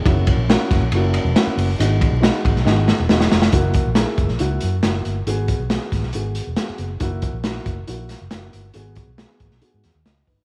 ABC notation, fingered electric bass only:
X:1
M:4/4
L:1/16
Q:1/4=138
K:F#mix
V:1 name="Fingered electric bass" clef=bass
F,,,3 A,,,2 z F,,, A,,, F,,,3 E,,, z2 F,,,2 | G,,,3 B,,,2 z G,,, B,,, G,,,3 E,,, E,,,2 ^E,,,2 | F,,,3 A,,,2 z F,,, A,,, C,,2 F,,2 F,,,2 =G,,,2 | G,,,3 B,,,2 z G,,, B,,, G,,,3 E,,, z2 F,,,2 |
F,,,3 A,,,3 F,,,2 A,,,3 F,,, F,,,2 =G,,,2 | G,,,3 B,,,2 z G,,, B,,, z G,, E,, D,, z2 =G,,, z |]